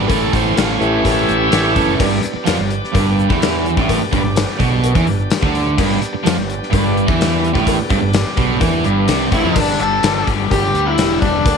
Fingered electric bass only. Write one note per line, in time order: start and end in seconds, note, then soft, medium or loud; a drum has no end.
0.10 0.32 A1 medium
0.33 0.55 A1 medium
0.57 0.79 A1 medium
0.81 1.03 A1 loud
1.05 1.27 A1 medium
1.29 1.51 A1 medium
1.53 1.75 A1 medium
1.76 1.98 F#1 medium
2.00 2.22 G1 medium
2.24 muted fingered electric bass stroke soft
2.36 muted fingered electric bass stroke soft
2.48 2.58 F2 medium
2.58 2.81 G1 medium
2.95 3.27 G1 medium
3.30 3.74 E2 loud
3.77 3.99 A1 loud
4.01 muted fingered electric bass stroke soft
4.13 4.23 G1 medium
4.23 4.46 G1 medium
4.60 4.93 B1 medium
4.95 5.06 E2 loud
5.07 5.29 G1 medium
5.43 5.76 D2 medium
5.79 6.00 G1 loud
6.03 muted fingered electric bass stroke soft
6.14 muted fingered electric bass stroke soft
6.27 6.37 F2 medium
6.38 6.60 G1 medium
6.73 7.06 G1 loud
7.09 7.52 E2 loud
7.56 7.78 A1 loud
7.79 muted fingered electric bass stroke soft
7.91 8.01 G1 medium
8.02 8.24 G1 medium
8.37 8.60 B1 medium
8.61 8.83 E2 loud
8.84 9.07 G1 medium
9.08 9.30 C2 loud
9.32 9.43 A1 loud
9.44 9.55 F2 loud
9.56 9.77 G1 medium
9.79 10.01 G1 medium
10.03 10.24 G1 loud
10.27 10.48 G1 loud
10.51 10.72 G1 medium
10.74 10.95 D2 medium
10.98 11.19 E1 loud
11.22 11.43 E1 loud
11.46 11.57 D2 loud